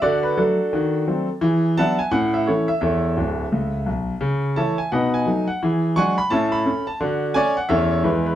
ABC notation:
X:1
M:4/4
L:1/8
Q:"Swing" 1/4=172
K:A
V:1 name="Grand piano"
[FAd] B [DFA]4- [DFA] z | z2 [efa] g f e [EAc] e | [Ace]6 z2 | z2 [cea] g [B^df] g2 f |
z2 [fgc'] b [cea] b2 a | z2 [cdg] f [Ace] c [EGB] B |]
V:2 name="Grand piano" clef=bass
D,2 [F,A,]2 [^D,F]2 [F,A,^B,]2 | [E,G]2 [F,B,D]2 [A,,C]2 [E,A,C]2 | E,,2 [D,,,D,,]2 C,,2 B,,,2 | C,2 [E,A,E]2 [B,,^D]2 [F,A,D]2 |
[E,G]2 [F,G,D]2 [A,,C]2 [A,C]2 | [D,F]2 [A,C]2 [E,,E,A,C]2 [E,,E,G,B,]2 |]